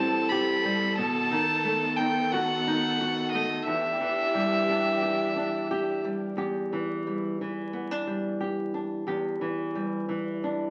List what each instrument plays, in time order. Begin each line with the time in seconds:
Already playing: nylon-string guitar A2 E3 G3 G4, string section G3 C4 A4, violin A5
0.00 nylon-string guitar C4
0.29 nylon-string guitar G4, violin B5
0.65 nylon-string guitar G3
0.97 nylon-string guitar B2, string section D#3 B3, violin A5
1.31 nylon-string guitar D#3
1.65 nylon-string guitar A3
1.96 nylon-string guitar D#4, violin G5
2.32 nylon-string guitar F#4, violin F#5
2.67 nylon-string guitar D#4
3.01 nylon-string guitar F#4
3.32 nylon-string guitar A3, violin D#5
3.66 nylon-string guitar E2, string section E3 D4 G4, violin E5
4.00 nylon-string guitar E3
4.35 nylon-string guitar G3
4.70 nylon-string guitar D4
5.03 nylon-string guitar G4
5.36 nylon-string guitar D4
5.71 nylon-string guitar G4
6.04 nylon-string guitar G3
6.37 nylon-string guitar E2 G4
6.73 nylon-string guitar E3
7.07 nylon-string guitar G3
7.41 nylon-string guitar E3
7.73 nylon-string guitar B3
7.91 nylon-string guitar D4
8.07 nylon-string guitar G3
8.40 nylon-string guitar G4
8.74 nylon-string guitar D4
9.07 nylon-string guitar E2 G4
9.41 nylon-string guitar E3
9.75 nylon-string guitar G3
10.09 nylon-string guitar E3
10.44 nylon-string guitar D4